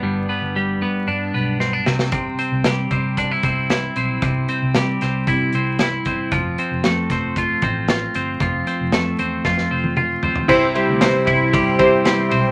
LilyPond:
<<
  \new Staff \with { instrumentName = "Synth keys" } { \time 4/4 \key c \major \tempo 4 = 115 r1 | r1 | r1 | r1 |
r1 | <e' g' c''>8 <e' g' c''>8 <e' g' c''>8 <e' g' c''>8 <e' g' c''>8 <e' g' c''>8 <e' g' c''>8 <e' g' c''>8 | }
  \new Staff \with { instrumentName = "Clean electric guitar" } { \time 4/4 \key c \major <g, g b d'>8 b8 g8 b8 d'8 b8 c'16 d'16 c8 | c8 c'8 g8 c'8 d'16 e'16 c'8 e'8 c'8 | c8 c'8 g8 c'8 e'8 c'8 e'8 c'8 | f8 c'8 a8 c'8 f'8 c'8 f'8 c'8 |
f8 c'8 a8 c'8 f'8 c'8 f'8 c'8 | <c e'>8 g8 c'8 e'8 g8 c'8 g8 c'8 | }
  \new Staff \with { instrumentName = "Fingered electric bass" } { \clef bass \time 4/4 \key c \major g,,8 r16 g,,8. g,8 g,8 b,,4 c,8~ | c,8 r16 c,16 c8 c4 c,4 b,,8 | c,8 r16 c,16 c8 c,8 c8 c,4 r8 | f,,8 r16 f,,16 f,8 f,,4 a,,4 g,,8 |
f,,8 r16 f,,16 f,8 e,8 f,8 f,,4 r8 | c,8. d,8 r16 c,2 b,,8 | }
  \new DrumStaff \with { instrumentName = "Drums" } \drummode { \time 4/4 r4 r4 r4 sn8 sn16 sn16 | <hh bd>8 hh8 <hh sn>8 <hh bd>8 <hh bd>8 <hh bd>8 <hh sn>8 hh8 | <hh bd>8 hh8 <hh sn>8 <hh sn>8 <hh bd>8 hh8 <hh sn>8 <hh bd>8 | <hh bd>8 hh8 <hh sn>8 <hh bd sn>8 <hh bd>8 <hh bd>8 <hh sn>8 hh8 |
<hh bd>8 hh8 <hh sn>8 hh8 <bd sn>16 sn8 tommh16 toml8 tomfh16 tomfh16 | <cymc bd>8 cymr8 <cymr sn>8 <bd cymr>8 <bd cymr>8 <bd cymr>8 <cymr sn>8 cymr8 | }
>>